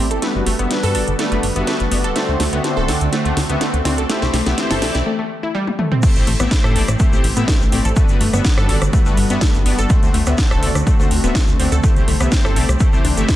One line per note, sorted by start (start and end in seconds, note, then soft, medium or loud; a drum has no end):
0.00 0.12 A1 loud
0.00 0.18 E3 medium
0.00 0.18 A3 medium
0.00 0.10 C4 medium
0.00 0.18 C4 medium
0.00 0.18 G4 medium
0.11 0.18 G1 medium
0.11 0.18 A4 medium
0.11 closed hi-hat medium
0.22 4.05 D3 medium
0.22 2.14 G3 medium
0.22 0.29 G3 loud
0.22 0.30 A3 medium
0.22 2.14 B3 medium
0.22 0.29 B3 medium
0.22 0.29 D4 medium
0.22 0.29 F#4 medium
0.22 4.05 F#4 medium
0.22 0.29 B4 loud
0.22 snare medium
0.22 closed hi-hat medium
0.35 0.42 G1 medium
0.35 0.41 G3 medium
0.35 0.41 B3 medium
0.35 0.41 D4 medium
0.35 0.41 F#4 medium
0.35 0.41 B4 loud
0.46 0.55 G1 loud
0.46 0.55 A3 medium
0.46 open hi-hat loud
0.59 0.67 G1 medium
0.59 0.65 G3 medium
0.59 0.65 B3 medium
0.59 0.70 B3 medium
0.59 0.65 D4 medium
0.59 0.65 F#4 medium
0.59 0.65 E5 medium
0.59 closed hi-hat soft
0.70 0.92 G3 medium
0.70 0.92 B3 medium
0.70 0.92 D4 medium
0.70 0.92 F#4 medium
0.70 0.92 B4 loud
0.70 snare medium
0.70 closed hi-hat medium
0.83 0.96 G2 medium
0.83 0.94 A4 loud
0.83 open hi-hat medium
0.95 1.03 G1 loud
0.95 1.01 G3 medium
0.95 1.01 B3 medium
0.95 1.01 D4 medium
0.95 1.01 F#4 medium
0.95 1.03 A4 medium
0.95 1.01 D5 loud
0.95 open hi-hat loud
1.07 1.15 G1 medium
1.07 closed hi-hat soft
1.19 1.25 G3 medium
1.19 1.31 A3 medium
1.19 1.25 B3 medium
1.19 1.25 D4 medium
1.19 1.25 F#4 medium
1.19 1.25 B4 medium
1.19 snare medium
1.19 closed hi-hat medium
1.32 1.39 G1 medium
1.32 1.37 G3 medium
1.32 1.36 A3 medium
1.32 1.37 B3 medium
1.32 1.37 D4 medium
1.32 1.37 F#4 medium
1.32 1.37 B4 loud
1.32 closed hi-hat soft
1.43 1.51 G1 loud
1.43 open hi-hat loud
1.56 1.63 G1 medium
1.56 1.65 G3 medium
1.56 1.65 B3 medium
1.56 1.67 B3 medium
1.56 1.65 D4 medium
1.56 1.65 F#4 medium
1.56 1.65 E5 loud
1.56 closed hi-hat soft
1.67 1.74 G3 medium
1.67 1.75 A3 medium
1.67 1.74 B3 medium
1.67 1.74 D4 medium
1.67 1.74 F#4 medium
1.67 1.74 B4 loud
1.67 snare medium
1.67 closed hi-hat medium
1.80 1.88 G1 medium
1.80 closed hi-hat soft
1.91 2.06 G1 loud
1.91 1.98 G3 medium
1.91 1.98 B3 medium
1.91 2.04 B3 medium
1.91 1.98 D4 medium
1.91 1.98 F#4 medium
1.91 1.98 D5 medium
1.91 open hi-hat loud
2.04 2.12 D1 medium
2.04 2.12 A4 medium
2.04 closed hi-hat medium
2.16 2.24 A3 medium
2.16 2.22 A3 loud
2.16 5.03 A3 medium
2.16 2.22 C4 medium
2.16 5.03 C4 medium
2.16 2.22 D4 medium
2.16 2.22 F#4 medium
2.16 2.22 C5 loud
2.16 snare medium
2.16 closed hi-hat medium
2.28 2.36 D2 medium
2.28 2.34 A3 medium
2.28 2.34 C4 medium
2.28 2.34 D4 medium
2.28 2.34 F#4 medium
2.28 2.34 C5 loud
2.40 2.48 D2 loud
2.40 2.48 A3 medium
2.40 snare medium
2.40 open hi-hat loud
2.53 2.60 D2 medium
2.53 2.58 A3 medium
2.53 2.64 B3 medium
2.53 2.58 C4 medium
2.53 2.58 D4 medium
2.53 2.58 F#4 medium
2.53 2.58 E5 medium
2.53 closed hi-hat medium
2.64 2.86 A3 medium
2.64 2.86 C4 medium
2.64 2.86 D4 medium
2.64 2.86 F#4 medium
2.64 2.86 C5 loud
2.64 snare medium
2.64 closed hi-hat medium
2.77 2.90 D1 medium
2.77 2.87 A4 loud
2.88 2.97 D2 loud
2.88 2.95 A3 loud
2.88 2.95 C4 medium
2.88 2.95 D4 medium
2.88 2.95 F#4 medium
2.88 2.96 A4 medium
2.88 2.95 D5 loud
2.88 snare medium
2.88 open hi-hat loud
3.01 3.09 D2 loud
3.01 closed hi-hat medium
3.12 3.24 A3 medium
3.12 3.19 A3 medium
3.12 3.19 C4 medium
3.12 3.19 D4 medium
3.12 3.19 F#4 medium
3.12 3.19 C5 medium
3.12 snare medium
3.12 closed hi-hat medium
3.25 3.33 D2 medium
3.25 3.30 A3 medium
3.25 3.31 A3 loud
3.25 3.31 C4 medium
3.25 3.31 D4 medium
3.25 3.31 F#4 medium
3.25 3.31 C5 loud
3.25 closed hi-hat soft
3.37 3.45 D2 loud
3.37 snare medium
3.37 open hi-hat loud
3.49 3.57 D2 medium
3.49 3.59 A3 medium
3.49 3.60 B3 medium
3.49 3.59 C4 medium
3.49 3.59 D4 medium
3.49 3.59 F#4 medium
3.49 3.59 E5 loud
3.49 closed hi-hat medium
3.61 3.67 A3 medium
3.61 3.69 A3 medium
3.61 3.67 C4 medium
3.61 3.67 D4 medium
3.61 3.67 F#4 medium
3.61 3.67 C5 loud
3.61 snare medium
3.61 closed hi-hat medium
3.74 3.81 D2 medium
3.74 closed hi-hat soft
3.85 3.99 D2 loud
3.85 3.91 A3 medium
3.85 3.91 C4 medium
3.85 3.97 C4 medium
3.85 3.91 D4 medium
3.85 3.91 F#4 medium
3.85 3.91 D5 medium
3.85 snare medium
3.85 open hi-hat loud
3.98 4.05 C2 medium
3.98 4.05 A4 medium
3.98 closed hi-hat medium
4.09 5.05 E3 medium
4.09 4.16 A3 loud
4.09 4.17 A3 medium
4.09 4.16 C4 medium
4.09 4.16 E4 medium
4.09 4.16 G4 medium
4.09 5.05 G4 medium
4.09 4.16 C5 loud
4.09 snare medium
4.09 closed hi-hat medium
4.22 4.30 C2 medium
4.22 4.28 A3 medium
4.22 4.28 C4 medium
4.22 4.28 E4 medium
4.22 4.28 G4 medium
4.22 4.28 C5 loud
4.22 snare medium
4.33 4.42 C2 loud
4.33 4.42 A3 medium
4.33 snare medium
4.33 open hi-hat loud
4.46 4.54 C2 medium
4.46 4.52 A3 medium
4.46 4.57 B3 medium
4.46 4.52 C4 medium
4.46 4.52 E4 medium
4.46 4.52 G4 medium
4.46 4.52 E5 medium
4.46 snare medium
4.46 closed hi-hat medium
4.58 4.79 A3 loud
4.58 4.79 C4 medium
4.58 4.79 E4 medium
4.58 4.79 G4 medium
4.58 4.79 C5 loud
4.58 snare medium
4.58 closed hi-hat medium
4.71 4.84 G1 medium
4.71 4.81 A4 loud
4.71 snare medium
4.71 open hi-hat medium
4.82 4.90 C2 loud
4.82 4.88 A3 medium
4.82 4.88 C4 medium
4.82 4.88 E4 medium
4.82 4.88 G4 medium
4.82 4.90 A4 medium
4.82 4.88 D5 loud
4.82 snare loud
4.82 open hi-hat loud
4.95 5.02 C2 loud
4.95 snare medium
4.95 closed hi-hat medium
5.06 5.18 A3 medium
5.19 5.23 A3 medium
5.43 5.50 E4 medium
5.55 5.63 G3 loud
5.67 high tom medium
5.79 5.91 A3 medium
5.79 mid tom medium
5.92 5.99 C4 medium
5.92 mid tom medium
6.03 7.95 E3 medium
6.03 7.95 A3 medium
6.03 6.09 A3 loud
6.03 6.11 A3 medium
6.03 7.94 C4 medium
6.03 6.09 C4 medium
6.03 6.09 E4 medium
6.03 7.95 G4 medium
6.03 6.09 G4 medium
6.03 6.09 C5 loud
6.03 kick loud
6.03 closed hi-hat medium
6.03 crash loud
6.03 shaker medium
6.15 6.23 A1 medium
6.15 6.21 A3 medium
6.15 6.21 C4 medium
6.15 6.21 E4 medium
6.15 6.21 G4 medium
6.15 6.21 C5 loud
6.15 closed hi-hat soft
6.15 shaker soft
6.27 6.35 A1 loud
6.27 6.35 A3 medium
6.27 open hi-hat loud
6.40 6.47 A1 medium
6.40 6.46 A3 medium
6.40 6.51 B3 medium
6.40 6.46 C4 medium
6.40 6.46 E4 medium
6.40 6.46 G4 medium
6.40 6.46 E5 medium
6.40 cross-stick medium
6.40 closed hi-hat medium
6.40 shaker medium
6.51 6.73 A3 loud
6.51 6.73 C4 medium
6.51 6.73 E4 medium
6.51 6.73 G4 medium
6.51 6.73 C5 loud
6.51 kick loud
6.51 snare loud
6.51 closed hi-hat medium
6.51 shaker medium
6.64 6.77 A2 medium
6.64 6.74 A4 loud
6.64 cross-stick medium
6.64 shaker soft
6.75 6.84 A1 loud
6.75 6.82 A3 medium
6.75 6.82 C4 medium
6.75 6.82 E4 medium
6.75 6.82 G4 medium
6.75 6.84 A4 medium
6.75 6.82 D5 loud
6.75 open hi-hat loud
6.88 6.96 A1 medium
6.88 cross-stick medium
6.88 closed hi-hat medium
6.88 shaker medium
6.99 7.06 A3 medium
6.99 7.11 A3 medium
6.99 7.06 C4 medium
6.99 7.06 E4 medium
6.99 7.06 G4 medium
6.99 7.06 C5 medium
6.99 kick loud
6.99 closed hi-hat medium
6.99 shaker medium
7.12 7.20 A1 medium
7.12 7.18 A3 loud
7.12 7.17 A3 medium
7.12 7.18 C4 medium
7.12 7.18 E4 medium
7.12 7.18 G4 medium
7.12 7.18 C5 loud
7.12 shaker soft
7.24 7.32 A1 loud
7.24 open hi-hat loud
7.36 7.44 A2 medium
7.36 7.46 A3 medium
7.36 7.47 B3 medium
7.36 7.46 C4 medium
7.36 7.46 E4 medium
7.36 7.46 G4 medium
7.36 7.46 E5 loud
7.36 closed hi-hat medium
7.36 shaker medium
7.48 7.54 A3 medium
7.48 7.56 A3 medium
7.48 7.54 C4 medium
7.48 7.54 E4 medium
7.48 7.54 C5 loud
7.48 kick loud
7.48 snare loud
7.48 closed hi-hat medium
7.48 shaker medium
7.61 7.68 A1 medium
7.61 shaker soft
7.72 7.81 A1 loud
7.72 7.79 A3 medium
7.72 7.79 C4 medium
7.72 7.84 C4 medium
7.72 7.78 E4 medium
7.72 7.79 G4 medium
7.72 7.79 D5 medium
7.72 open hi-hat loud
7.85 7.92 A1 medium
7.85 7.92 A4 medium
7.85 closed hi-hat medium
7.85 shaker medium
7.96 9.88 D3 medium
7.96 8.03 G3 loud
7.96 9.88 G3 medium
7.96 8.05 A3 medium
7.96 8.03 B3 medium
7.96 9.88 B3 medium
7.96 8.03 D4 medium
7.96 8.03 F#4 medium
7.96 9.88 F#4 medium
7.96 8.03 B4 loud
7.96 kick loud
7.96 closed hi-hat medium
7.96 shaker medium
8.09 8.17 G1 medium
8.09 8.15 G3 medium
8.09 8.15 B3 medium
8.09 8.15 D4 medium
8.09 8.15 F#4 medium
8.09 8.15 B4 loud
8.09 closed hi-hat soft
8.09 shaker soft
8.21 8.29 G1 loud
8.21 8.29 A3 medium
8.21 open hi-hat loud
8.33 8.41 G1 medium
8.33 8.39 G3 medium
8.33 8.39 B3 medium
8.33 8.44 B3 medium
8.33 8.39 D4 medium
8.33 8.39 F#4 medium
8.33 8.39 E5 medium
8.33 cross-stick medium
8.33 closed hi-hat medium
8.33 shaker medium
8.45 8.66 G3 loud
8.45 8.66 B3 medium
8.45 8.66 D4 medium
8.45 8.66 F#4 medium
8.45 8.66 B4 loud
8.45 kick loud
8.45 snare loud
8.45 closed hi-hat medium
8.45 shaker medium
8.58 8.70 G2 medium
8.58 8.68 A4 loud
8.58 cross-stick medium
8.58 shaker soft
8.69 8.77 G1 loud
8.69 8.75 G3 medium
8.69 8.75 B3 medium
8.69 8.75 D4 medium
8.69 8.75 F#4 medium
8.69 8.77 A4 medium
8.69 8.75 D5 loud
8.69 open hi-hat loud
8.82 8.89 G1 loud
8.82 cross-stick medium
8.82 closed hi-hat medium
8.82 shaker medium
8.93 8.99 G3 medium
8.93 9.05 A3 medium
8.93 8.99 B3 medium
8.93 8.99 D4 medium
8.93 8.99 F#4 medium
8.93 8.99 B4 medium
8.93 kick loud
8.93 closed hi-hat medium
8.93 shaker medium
9.06 9.13 G1 medium
9.06 9.12 G3 medium
9.06 9.10 A3 medium
9.06 9.12 B3 medium
9.06 9.12 D4 medium
9.06 9.12 F#4 medium
9.06 9.12 B4 loud
9.06 shaker soft
9.17 9.26 G1 loud
9.17 open hi-hat loud
9.29 9.38 G2 medium
9.29 9.39 G3 medium
9.29 9.39 B3 medium
9.29 9.41 B3 medium
9.29 9.39 D4 medium
9.29 9.39 F#4 medium
9.29 9.39 E5 loud
9.29 closed hi-hat medium
9.29 shaker medium
9.41 9.48 G3 medium
9.41 9.50 A3 medium
9.41 9.48 D4 medium
9.41 9.48 B4 loud
9.41 kick loud
9.41 snare loud
9.41 closed hi-hat medium
9.41 shaker medium
9.54 9.62 G1 medium
9.54 shaker soft
9.66 9.74 G1 loud
9.66 9.72 G3 medium
9.66 9.72 B3 medium
9.66 9.78 B3 medium
9.66 9.72 D4 medium
9.66 9.72 F#4 medium
9.66 9.72 D5 medium
9.66 open hi-hat loud
9.79 9.86 G1 medium
9.79 9.86 A4 medium
9.79 closed hi-hat medium
9.79 shaker medium
9.90 11.82 D3 medium
9.90 9.96 A3 loud
9.90 9.98 A3 medium
9.90 13.36 A3 medium
9.90 9.96 C4 medium
9.90 11.82 C4 medium
9.90 9.96 D4 medium
9.90 9.96 F#4 medium
9.90 11.82 F#4 medium
9.90 9.96 C5 loud
9.90 kick loud
9.90 closed hi-hat medium
9.90 shaker medium
10.03 10.10 D2 medium
10.03 10.08 A3 medium
10.03 10.08 C4 medium
10.03 10.08 D4 medium
10.03 10.08 F#4 medium
10.03 10.08 C5 loud
10.03 closed hi-hat soft
10.03 shaker soft
10.14 10.22 D2 loud
10.14 10.22 A3 medium
10.14 open hi-hat loud
10.26 10.34 D2 medium
10.26 10.33 A3 medium
10.26 10.38 B3 medium
10.26 10.33 C4 medium
10.26 10.33 D4 medium
10.26 10.33 F#4 medium
10.26 10.33 E5 medium
10.26 cross-stick medium
10.26 closed hi-hat soft
10.26 shaker medium
10.38 10.60 A3 loud
10.38 10.60 C4 medium
10.38 10.60 D4 medium
10.38 10.60 F#4 medium
10.38 10.60 C5 loud
10.38 kick loud
10.38 snare loud
10.38 closed hi-hat medium
10.38 shaker medium
10.51 10.64 D1 medium
10.51 10.61 A4 loud
10.51 cross-stick medium
10.51 shaker soft
10.62 10.71 D2 loud
10.62 10.69 A3 medium
10.62 10.69 C4 medium
10.62 10.69 D4 medium
10.62 10.69 F#4 medium
10.62 10.71 A4 medium
10.62 10.69 D5 loud
10.62 open hi-hat loud
10.75 10.83 D2 medium
10.75 cross-stick medium
10.75 closed hi-hat soft
10.75 shaker medium
10.87 10.93 A3 medium
10.87 10.98 A3 medium
10.87 10.93 C4 medium
10.87 10.93 D4 medium
10.87 10.93 F#4 medium
10.87 10.93 C5 medium
10.87 kick loud
10.87 closed hi-hat medium
10.87 shaker medium
10.99 11.07 D2 medium
10.99 11.05 A3 medium
10.99 11.04 A3 medium
10.99 11.05 C4 medium
10.99 11.05 D4 medium
10.99 11.05 F#4 medium
10.99 11.05 C5 loud
10.99 shaker soft
11.11 11.19 D2 loud
11.11 open hi-hat loud
11.24 11.31 D1 medium
11.24 11.33 A3 medium
11.24 11.35 B3 medium
11.24 11.33 C4 medium
11.24 11.33 D4 medium
11.24 11.33 F#4 medium
11.24 11.33 E5 loud
11.24 closed hi-hat medium
11.24 shaker medium
11.35 11.41 A3 medium
11.35 11.43 A3 medium
11.35 11.41 C4 medium
11.35 11.41 C5 loud
11.35 kick loud
11.35 snare loud
11.35 closed hi-hat medium
11.35 shaker medium
11.48 11.55 D2 medium
11.48 shaker soft
11.59 11.68 D2 loud
11.59 11.66 A3 medium
11.59 11.66 C4 medium
11.59 11.71 C4 medium
11.59 11.66 D4 medium
11.59 11.66 F#4 medium
11.59 11.66 D5 medium
11.59 open hi-hat loud
11.72 11.79 D2 loud
11.72 11.79 A4 medium
11.72 closed hi-hat medium
11.72 shaker medium
11.83 13.36 E3 medium
11.83 11.92 A3 medium
11.83 11.90 A3 loud
11.83 13.36 C4 medium
11.83 11.90 C4 medium
11.83 11.90 E4 medium
11.83 13.36 G4 medium
11.83 11.90 G4 medium
11.83 11.90 C5 loud
11.83 kick loud
11.83 closed hi-hat medium
11.83 shaker medium
11.96 12.04 C2 medium
11.96 12.02 A3 medium
11.96 12.02 C4 medium
11.96 12.02 E4 medium
11.96 12.02 G4 medium
11.96 12.02 C5 loud
11.96 closed hi-hat soft
11.96 shaker soft
12.08 12.16 C2 loud
12.08 12.16 A3 medium
12.08 open hi-hat loud
12.20 12.28 C2 medium
12.20 12.26 A3 medium
12.20 12.31 B3 medium
12.20 12.26 C4 medium
12.20 12.26 E4 medium
12.20 12.26 G4 medium
12.20 12.26 E5 medium
12.20 cross-stick medium
12.20 closed hi-hat soft
12.20 shaker medium
12.32 12.53 A3 medium
12.32 12.53 C4 medium
12.32 12.53 E4 medium
12.32 12.53 G4 medium
12.32 12.53 C5 loud
12.32 kick loud
12.32 snare loud
12.32 closed hi-hat medium
12.32 shaker medium
12.45 12.58 G1 medium
12.45 12.55 A4 loud
12.45 cross-stick medium
12.45 shaker soft
12.56 12.64 C2 loud
12.56 12.62 A3 loud
12.56 12.62 C4 medium
12.56 12.62 E4 medium
12.56 12.62 G4 medium
12.56 12.64 A4 medium
12.56 12.62 D5 loud
12.56 open hi-hat loud
12.69 12.76 C2 loud
12.69 cross-stick medium
12.69 closed hi-hat soft
12.69 shaker medium
12.80 12.92 A3 medium
12.80 12.87 A3 medium
12.80 12.87 C4 medium
12.80 12.87 E4 medium
12.80 12.87 G4 medium
12.80 12.87 C5 medium
12.80 kick loud
12.80 closed hi-hat medium
12.80 shaker medium
12.93 13.01 C2 medium
12.93 12.99 A3 loud
12.93 12.97 A3 medium
12.93 12.99 C4 medium
12.93 12.99 E4 medium
12.93 12.99 G4 medium
12.93 12.99 C5 loud
12.93 shaker soft
13.04 13.13 C2 loud
13.04 13.13 D4 medium
13.04 open hi-hat loud
13.17 13.25 G1 medium
13.17 13.24 A3 medium
13.17 13.26 A3 medium
13.17 13.26 C4 medium
13.17 13.26 E4 medium
13.17 13.26 G4 medium
13.17 13.26 E5 loud
13.17 closed hi-hat soft
13.17 shaker medium
13.28 13.35 A3 medium
13.28 13.35 C4 medium
13.28 13.36 E4 medium
13.28 13.35 E4 medium
13.28 13.35 C5 loud
13.28 kick loud
13.28 snare loud
13.28 closed hi-hat medium
13.28 shaker medium